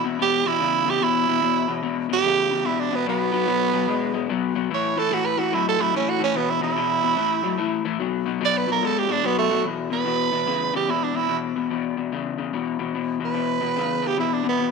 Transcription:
0.04 clean electric guitar E2 B2
0.19 clean electric guitar E2 B2, tenor saxophone G4
0.45 clean electric guitar E2 B2, tenor saxophone E4
0.60 clean electric guitar E2 C#3
0.86 clean electric guitar E2 C#3
0.90 tenor saxophone G4
1.01 clean electric guitar E2 B2, tenor saxophone E4
1.27 clean electric guitar E2 B2
1.42 clean electric guitar E2 B2
1.68 clean electric guitar E2 B2
1.83 clean electric guitar E2 B2
2.09 clean electric guitar E2 B2
2.13 tenor saxophone G4
2.24 clean electric guitar E2 C#3
2.50 clean electric guitar E2 C#3
2.65 clean electric guitar E2 B2, tenor saxophone E4
2.80 tenor saxophone D4
2.91 clean electric guitar E2 B2
2.95 tenor saxophone B3
3.06 clean electric guitar B2 F#3, tenor saxophone B3
3.32 clean electric guitar B2 F#3
3.47 clean electric guitar B2 F#3
3.73 clean electric guitar B2 F#3
3.88 clean electric guitar B2 G#3
4.14 clean electric guitar B2 G#3
4.29 clean electric guitar B2 F#3
4.55 clean electric guitar B2 F#3
4.71 clean electric guitar A2 E3, tenor saxophone C#5
4.97 clean electric guitar A2 E3, tenor saxophone A4
5.11 clean electric guitar A2 E3, tenor saxophone F#4
5.26 tenor saxophone B4
5.38 clean electric guitar A2 E3, tenor saxophone F#4
5.52 clean electric guitar A2 F#3, tenor saxophone E4
5.69 tenor saxophone A4
5.78 clean electric guitar A2 F#3, tenor saxophone E4
5.94 clean electric guitar A2 E3, tenor saxophone C#4
6.10 tenor saxophone F#4
6.20 clean electric guitar A2 E3
6.24 tenor saxophone C#4
6.35 clean electric guitar E2 B2, tenor saxophone B3
6.50 tenor saxophone E4
6.61 clean electric guitar E2 B2, tenor saxophone E4
6.76 clean electric guitar E2 B2
7.02 clean electric guitar E2 B2
7.16 clean electric guitar A2 E3
7.43 clean electric guitar A2 F#3
7.58 clean electric guitar A2 E3
7.85 clean electric guitar A2 E3
8.00 clean electric guitar B2 F#3
8.26 clean electric guitar B2 F#3
8.41 clean electric guitar B2 F#3
8.45 tenor saxophone D5
8.58 tenor saxophone B4
8.67 clean electric guitar B2 F#3
8.72 tenor saxophone A#4
8.82 clean electric guitar B2 G#3, tenor saxophone A4
8.99 tenor saxophone G4
9.09 clean electric guitar B2 G#3, tenor saxophone D4
9.24 clean electric guitar B2 F#3, tenor saxophone B3
9.39 tenor saxophone A3
9.50 clean electric guitar B2 F#3
9.64 clean electric guitar E2 B2
9.90 clean electric guitar E2 B2, tenor saxophone B4
10.05 clean electric guitar E2 B2
10.32 clean electric guitar E2 B2
10.46 clean electric guitar E2 C#3
10.73 clean electric guitar E2 C#3, tenor saxophone G4
10.88 clean electric guitar E2 B2, tenor saxophone E4
11.04 tenor saxophone D4
11.14 clean electric guitar E2 B2, tenor saxophone E4
11.29 clean electric guitar E2 B2
11.56 clean electric guitar E2 B2
11.71 clean electric guitar E2 B2
11.97 clean electric guitar E2 B2
12.12 clean electric guitar E2 C#3
12.38 clean electric guitar E2 C#3
12.53 clean electric guitar E2 B2
12.79 clean electric guitar E2 B2
12.94 clean electric guitar E2 B2
13.20 clean electric guitar E2 B2
13.25 tenor saxophone B4
13.34 clean electric guitar E2 B2
13.61 clean electric guitar E2 B2
13.76 clean electric guitar E2 C#3
14.02 clean electric guitar E2 C#3
14.07 tenor saxophone G4
14.17 clean electric guitar E2 B2, tenor saxophone E4
14.34 tenor saxophone D4
14.43 clean electric guitar E2 B2
14.49 tenor saxophone B3
14.59 clean electric guitar E2 B2

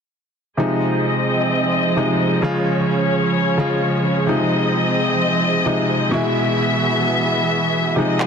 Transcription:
0.57 grand piano C3 F3 G#3 D#4, string section F3 C4 G#4 D#5
1.96 grand piano C3 F3 G#3 D#4
2.42 grand piano C#3 F3 G#3 F4, string section C#4 C#5
3.57 grand piano C#3 F3 G#3 F4
4.27 grand piano C3 F3 G#3 D#4, string section C4 D#5
5.66 grand piano C3 F3 G#3 D#4
6.11 grand piano B2 E3 G#3 E4, string section E3 B3 E5
7.96 grand piano C3 F3 G#3 D#4, string section F3 C4 D#5
8.20 clap

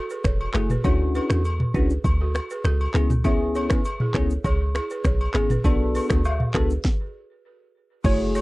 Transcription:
0.10 balafon G#4 B4, shaker
0.24 log drum bass E1, balafon A4 C#5, finger snap, kick, cross-stick, shaker
0.41 high agogo
0.54 log drum bass F#1, tine electric piano A3 E4 F#4 G#4, balafon F#4 A4, finger snap, cross-stick, clap, shaker
0.70 balafon G#4 B4, mid tom, shaker
0.84 log drum bass D2, tine electric piano C#4 D4 E4 F#4, balafon A4 C#5, kick, high agogo, shaker
1.15 balafon G#4 B4, high agogo, shaker
1.30 log drum bass E2, balafon F#4 A4, finger snap, cross-stick, shaker
1.45 high agogo, shaker
1.60 mid tom
1.74 log drum bass C#2, tine electric piano C#4 D4 E4 F#4, balafon G#4 B4, kick, shaker
1.90 shaker
2.04 log drum bass D2, kick, high agogo, shaker
2.21 balafon F#4 A4
2.35 finger snap, cross-stick, high agogo, shaker
2.50 balafon G#4 B4, shaker
2.64 log drum bass C#2, balafon F#4 A4, finger snap, cross-stick, shaker
2.81 high agogo
2.94 log drum bass C#2, tine electric piano B3 C#4 E4 G#4, finger snap, cross-stick, clap, shaker
3.10 mid tom, shaker
3.24 tine electric piano B3 C#4 E4 G#4, balafon C#5 E5, kick, high agogo, shaker
3.55 balafon A4 C#5, high agogo, shaker
3.70 log drum bass G#1, balafon G#4 B4, finger snap, kick, cross-stick, shaker
3.85 high agogo, shaker
4.00 balafon E4 G#4, mid tom
4.14 log drum bass C#2, tine electric piano B3 C#4 E4 G#4, balafon A4 C#5, finger snap, kick, cross-stick, clap, shaker
4.30 shaker
4.44 log drum bass C#2, balafon G#4 C#5, kick, high agogo, shaker
4.75 balafon E4 G#4, finger snap, cross-stick, high agogo, shaker
4.90 balafon G#4 B4, shaker
5.04 log drum bass B1, balafon G#4 C#5, finger snap, kick, cross-stick, shaker
5.21 high agogo
5.34 log drum bass G#1, tine electric piano B3 C#4 E4 G#4, balafon E4 G#4, finger snap, cross-stick, clap, shaker
5.50 balafon G#4 B4, mid tom, shaker
5.64 log drum bass B1, tine electric piano B3 D4 F#4 A4, balafon B4 D5, kick, high agogo, shaker
5.95 balafon G#4 B4, open hi-hat, high agogo, shaker
6.10 log drum bass D2, balafon F#4 A4, finger snap, kick, cross-stick, shaker
6.25 high agogo, low woodblock, shaker
6.40 mid tom
6.54 log drum bass C#2, tine electric piano B3 D4 F#4 A4, balafon G#4 B4, finger snap, kick, cross-stick, clap, shaker
6.70 shaker
6.85 kick, snare
8.04 log drum bass F#1, tine electric piano A3 E4 F#4 G#4, synth pluck C#5, kick, crash, high agogo, shaker
8.35 balafon A4 C#5, open hi-hat, high agogo, shaker

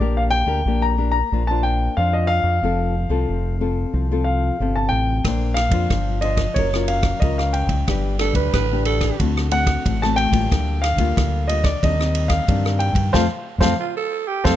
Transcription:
Already playing: grand piano D5
0.00 fingered electric bass A#1, nylon-string guitar A#3 D4 G4 A#4
0.17 grand piano F5
0.31 grand piano G5
0.46 fingered electric bass D2, nylon-string guitar D4 G4 A#4
0.65 fingered electric bass A#1, nylon-string guitar A#3 D4 G4 A#4
0.82 grand piano A#5
0.98 nylon-string guitar D4 G4 A#4
1.12 grand piano A#5
1.32 fingered electric bass A#1, nylon-string guitar A#3 D4 F4 C5
1.47 nylon-string guitar D4 F4 C5, grand piano A5
1.63 grand piano G5
1.97 fingered electric bass F2, nylon-string guitar F3 D4 F4 C5, grand piano F5
2.13 grand piano D#5
2.27 grand piano F5
2.43 fingered electric bass F2
2.62 fingered electric bass F1, nylon-string guitar F3 C4 F4 A4
3.09 fingered electric bass C2, nylon-string guitar C4 F4 A4
3.28 fingered electric bass F1, nylon-string guitar C3
3.61 nylon-string guitar C4 F4 A4
3.93 fingered electric bass C2, nylon-string guitar F3
4.12 nylon-string guitar C4 F4 A4
4.24 grand piano F5
4.60 fingered electric bass G1, nylon-string guitar C3 C4 F4 A4
4.76 grand piano A5
4.89 fingered electric bass A1, grand piano G5
5.25 fingered electric bass A#1, nylon-string guitar A#3 D4 F4 C5, kick, cross-stick, ride
5.54 grand piano F5, cross-stick, ride
5.69 fingered electric bass F2, nylon-string guitar D4, kick, ride
5.73 nylon-string guitar F4 C5
5.90 fingered electric bass G1, nylon-string guitar F3, kick, cross-stick, ride
6.21 nylon-string guitar D4 F4 C5, grand piano D#5, ride
6.37 kick, cross-stick, ride
6.54 fingered electric bass F#1, nylon-string guitar F#3 C#4 F4, grand piano C#5, kick, ride
6.58 nylon-string guitar A#4
6.74 nylon-string guitar C#4 F4 A#4, cross-stick
6.88 grand piano F5, ride
7.03 kick, cross-stick, ride
7.20 fingered electric bass C#2, nylon-string guitar C#3 C#4 F4 A#4, grand piano D#5, kick, ride
7.38 grand piano F5, cross-stick
7.53 grand piano G5, ride
7.67 fingered electric bass C#2, kick, ride
7.88 fingered electric bass G1, nylon-string guitar G3 D4 G4 B4, kick, cross-stick, ride
8.19 nylon-string guitar D4 G4 B4, tenor saxophone A4, cross-stick, ride
8.32 fingered electric bass D2, tenor saxophone B4, kick, ride
8.54 fingered electric bass A1, nylon-string guitar D3, tenor saxophone B4, kick, cross-stick, ride
8.72 nylon-string guitar D4 G4 B4
8.85 tenor saxophone A4, ride
9.01 kick, cross-stick, ride
9.20 fingered electric bass D2, nylon-string guitar D3 A3 C4 F#4, kick, ride
9.37 cross-stick
9.51 nylon-string guitar A3 C4 F#4, grand piano F#5, ride
9.67 kick, cross-stick, ride
9.86 fingered electric bass A1, nylon-string guitar A2, kick, ride
10.02 nylon-string guitar A3 C4 F#4, grand piano A5, cross-stick
10.16 grand piano G5, ride
10.30 fingered electric bass A1, nylon-string guitar G3 A#3 F4, kick, ride
10.51 fingered electric bass D2, nylon-string guitar D3, kick, cross-stick, ride
10.82 grand piano F5, cross-stick, ride
10.96 fingered electric bass D2, nylon-string guitar G3 A#3, kick, ride
11.00 nylon-string guitar F4
11.17 fingered electric bass D2, nylon-string guitar D3, kick, cross-stick, ride
11.48 nylon-string guitar G3 A#3 F4, grand piano D#5, ride
11.64 grand piano D5, kick, cross-stick, ride
11.83 fingered electric bass D#2, nylon-string guitar D#3 G3 C4 D4, grand piano D#5, kick, ride
11.99 nylon-string guitar G3 C4, cross-stick
12.15 ride
12.28 grand piano F5, kick, cross-stick, ride
12.48 fingered electric bass G2, nylon-string guitar D#3 G3 C4 D4, kick, ride
12.66 cross-stick
12.79 grand piano G5, ride
12.93 fingered electric bass G2, kick, ride
13.13 fingered electric bass F2, nylon-string guitar A3 C4 F4, grand piano C5 F5 A5, kick, snare
13.58 fingered electric bass F2, nylon-string guitar A3 C4, grand piano C5 F5 A5, kick, snare
13.62 nylon-string guitar F4
13.80 tenor saxophone F4
13.97 tenor saxophone A4
14.27 tenor saxophone G4
14.44 fingered electric bass F2, nylon-string guitar A3 C4 F4, tenor saxophone A4, grand piano C5 F5 A5, kick, snare

